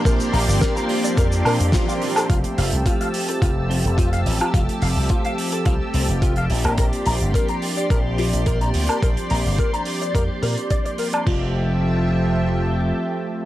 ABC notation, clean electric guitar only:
X:1
M:4/4
L:1/16
Q:1/4=107
K:F
V:1 name="Clean electric guitar"
B z b z B b z d B z B z F f z A | F z f z F f z A F z C z F f z F | F z f z F f z A F z C z F f z B | B z b z B b z d B z F z B b z B |
B z b z B b z d B z B z d d B d | F2 z12 z2 |]